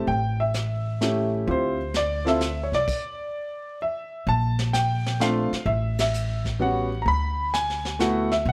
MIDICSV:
0, 0, Header, 1, 5, 480
1, 0, Start_track
1, 0, Tempo, 465839
1, 79, Time_signature, 3, 2, 24, 8
1, 8779, End_track
2, 0, Start_track
2, 0, Title_t, "Grand piano"
2, 0, Program_c, 0, 0
2, 80, Note_on_c, 0, 79, 86
2, 413, Note_on_c, 0, 76, 80
2, 416, Note_off_c, 0, 79, 0
2, 1039, Note_on_c, 0, 57, 60
2, 1045, Note_on_c, 0, 61, 54
2, 1049, Note_on_c, 0, 64, 59
2, 1054, Note_on_c, 0, 67, 66
2, 1329, Note_off_c, 0, 76, 0
2, 1506, Note_off_c, 0, 64, 0
2, 1515, Note_on_c, 0, 60, 48
2, 1516, Note_off_c, 0, 67, 0
2, 1520, Note_off_c, 0, 57, 0
2, 1521, Note_on_c, 0, 64, 46
2, 1523, Note_off_c, 0, 61, 0
2, 1527, Note_on_c, 0, 65, 47
2, 1531, Note_on_c, 0, 67, 58
2, 1555, Note_on_c, 0, 72, 86
2, 1812, Note_off_c, 0, 60, 0
2, 1815, Note_off_c, 0, 64, 0
2, 1818, Note_off_c, 0, 65, 0
2, 1820, Note_off_c, 0, 67, 0
2, 2026, Note_on_c, 0, 74, 94
2, 2032, Note_off_c, 0, 72, 0
2, 2317, Note_on_c, 0, 60, 65
2, 2324, Note_on_c, 0, 64, 63
2, 2333, Note_on_c, 0, 65, 64
2, 2335, Note_on_c, 0, 69, 71
2, 2350, Note_off_c, 0, 74, 0
2, 2350, Note_on_c, 0, 76, 93
2, 2461, Note_off_c, 0, 60, 0
2, 2464, Note_off_c, 0, 64, 0
2, 2469, Note_off_c, 0, 65, 0
2, 2470, Note_off_c, 0, 69, 0
2, 2715, Note_on_c, 0, 73, 59
2, 2732, Note_off_c, 0, 76, 0
2, 2811, Note_off_c, 0, 73, 0
2, 2829, Note_on_c, 0, 74, 97
2, 3891, Note_off_c, 0, 74, 0
2, 3937, Note_on_c, 0, 76, 76
2, 4376, Note_off_c, 0, 76, 0
2, 4416, Note_on_c, 0, 81, 100
2, 4856, Note_off_c, 0, 81, 0
2, 4878, Note_on_c, 0, 79, 92
2, 5359, Note_on_c, 0, 60, 61
2, 5360, Note_on_c, 0, 57, 68
2, 5363, Note_on_c, 0, 62, 60
2, 5371, Note_on_c, 0, 65, 76
2, 5374, Note_off_c, 0, 79, 0
2, 5374, Note_on_c, 0, 77, 84
2, 5654, Note_off_c, 0, 57, 0
2, 5654, Note_off_c, 0, 60, 0
2, 5656, Note_off_c, 0, 62, 0
2, 5660, Note_off_c, 0, 65, 0
2, 5833, Note_on_c, 0, 76, 82
2, 5862, Note_off_c, 0, 77, 0
2, 6140, Note_off_c, 0, 76, 0
2, 6183, Note_on_c, 0, 76, 77
2, 6622, Note_off_c, 0, 76, 0
2, 6794, Note_on_c, 0, 55, 57
2, 6796, Note_on_c, 0, 59, 54
2, 6806, Note_on_c, 0, 66, 65
2, 6807, Note_on_c, 0, 61, 55
2, 6822, Note_on_c, 0, 78, 90
2, 7091, Note_off_c, 0, 55, 0
2, 7092, Note_off_c, 0, 59, 0
2, 7097, Note_off_c, 0, 61, 0
2, 7097, Note_off_c, 0, 66, 0
2, 7215, Note_off_c, 0, 78, 0
2, 7233, Note_on_c, 0, 82, 74
2, 7280, Note_off_c, 0, 82, 0
2, 7294, Note_on_c, 0, 83, 95
2, 7767, Note_on_c, 0, 80, 93
2, 7781, Note_off_c, 0, 83, 0
2, 8210, Note_off_c, 0, 80, 0
2, 8236, Note_on_c, 0, 57, 70
2, 8243, Note_on_c, 0, 64, 61
2, 8245, Note_on_c, 0, 59, 66
2, 8250, Note_on_c, 0, 78, 90
2, 8254, Note_on_c, 0, 66, 80
2, 8532, Note_off_c, 0, 57, 0
2, 8535, Note_off_c, 0, 64, 0
2, 8536, Note_off_c, 0, 59, 0
2, 8541, Note_off_c, 0, 66, 0
2, 8549, Note_off_c, 0, 78, 0
2, 8569, Note_on_c, 0, 76, 84
2, 8711, Note_off_c, 0, 76, 0
2, 8745, Note_on_c, 0, 78, 91
2, 8779, Note_off_c, 0, 78, 0
2, 8779, End_track
3, 0, Start_track
3, 0, Title_t, "Upright bass"
3, 0, Program_c, 1, 32
3, 74, Note_on_c, 1, 33, 78
3, 1477, Note_off_c, 1, 33, 0
3, 1520, Note_on_c, 1, 38, 87
3, 2766, Note_off_c, 1, 38, 0
3, 2803, Note_on_c, 1, 36, 58
3, 2948, Note_off_c, 1, 36, 0
3, 4396, Note_on_c, 1, 34, 85
3, 5644, Note_off_c, 1, 34, 0
3, 5828, Note_on_c, 1, 33, 86
3, 7232, Note_off_c, 1, 33, 0
3, 7271, Note_on_c, 1, 38, 81
3, 8674, Note_off_c, 1, 38, 0
3, 8712, Note_on_c, 1, 35, 84
3, 8779, Note_off_c, 1, 35, 0
3, 8779, End_track
4, 0, Start_track
4, 0, Title_t, "Muted upright bass strokes"
4, 5685, Note_on_c, 9, 29, 35
4, 5788, Note_off_c, 9, 29, 0
4, 8779, End_track
5, 0, Start_track
5, 0, Title_t, "Drums"
5, 80, Note_on_c, 9, 25, 46
5, 555, Note_on_c, 9, 44, 55
5, 561, Note_on_c, 9, 38, 58
5, 659, Note_off_c, 9, 44, 0
5, 664, Note_off_c, 9, 38, 0
5, 1041, Note_on_c, 9, 44, 54
5, 1046, Note_on_c, 9, 38, 61
5, 1144, Note_off_c, 9, 44, 0
5, 1149, Note_off_c, 9, 38, 0
5, 1520, Note_off_c, 9, 25, 0
5, 1520, Note_on_c, 9, 25, 42
5, 1996, Note_on_c, 9, 44, 48
5, 2002, Note_on_c, 9, 38, 55
5, 2099, Note_off_c, 9, 44, 0
5, 2105, Note_off_c, 9, 38, 0
5, 2336, Note_on_c, 9, 38, 34
5, 2439, Note_off_c, 9, 38, 0
5, 2477, Note_on_c, 9, 44, 55
5, 2482, Note_on_c, 9, 38, 61
5, 2580, Note_off_c, 9, 44, 0
5, 2585, Note_off_c, 9, 38, 0
5, 2815, Note_on_c, 9, 38, 33
5, 2918, Note_off_c, 9, 38, 0
5, 2965, Note_on_c, 9, 36, 79
5, 2968, Note_on_c, 9, 49, 63
5, 3068, Note_off_c, 9, 36, 0
5, 3071, Note_off_c, 9, 49, 0
5, 4399, Note_off_c, 9, 25, 0
5, 4399, Note_on_c, 9, 25, 48
5, 4728, Note_on_c, 9, 38, 60
5, 4831, Note_off_c, 9, 38, 0
5, 4879, Note_on_c, 9, 44, 61
5, 4884, Note_on_c, 9, 38, 61
5, 4982, Note_off_c, 9, 44, 0
5, 4987, Note_off_c, 9, 38, 0
5, 5218, Note_on_c, 9, 38, 51
5, 5321, Note_off_c, 9, 38, 0
5, 5364, Note_on_c, 9, 44, 57
5, 5370, Note_on_c, 9, 38, 62
5, 5468, Note_off_c, 9, 44, 0
5, 5473, Note_off_c, 9, 38, 0
5, 5696, Note_on_c, 9, 38, 41
5, 5799, Note_off_c, 9, 38, 0
5, 5850, Note_off_c, 9, 25, 0
5, 5850, Note_on_c, 9, 25, 46
5, 6167, Note_on_c, 9, 51, 66
5, 6172, Note_on_c, 9, 38, 77
5, 6270, Note_off_c, 9, 51, 0
5, 6275, Note_off_c, 9, 38, 0
5, 6323, Note_on_c, 9, 44, 55
5, 6426, Note_off_c, 9, 44, 0
5, 6648, Note_on_c, 9, 36, 44
5, 6651, Note_on_c, 9, 38, 37
5, 6751, Note_off_c, 9, 36, 0
5, 6754, Note_off_c, 9, 38, 0
5, 7285, Note_off_c, 9, 25, 0
5, 7285, Note_on_c, 9, 25, 52
5, 7765, Note_on_c, 9, 44, 59
5, 7771, Note_on_c, 9, 38, 58
5, 7868, Note_off_c, 9, 44, 0
5, 7874, Note_off_c, 9, 38, 0
5, 7931, Note_on_c, 9, 38, 30
5, 8034, Note_off_c, 9, 38, 0
5, 8090, Note_on_c, 9, 38, 44
5, 8193, Note_off_c, 9, 38, 0
5, 8242, Note_on_c, 9, 44, 60
5, 8247, Note_on_c, 9, 38, 64
5, 8345, Note_off_c, 9, 44, 0
5, 8350, Note_off_c, 9, 38, 0
5, 8567, Note_on_c, 9, 38, 39
5, 8670, Note_off_c, 9, 38, 0
5, 8717, Note_off_c, 9, 25, 0
5, 8717, Note_on_c, 9, 25, 54
5, 8779, Note_off_c, 9, 25, 0
5, 8779, End_track
0, 0, End_of_file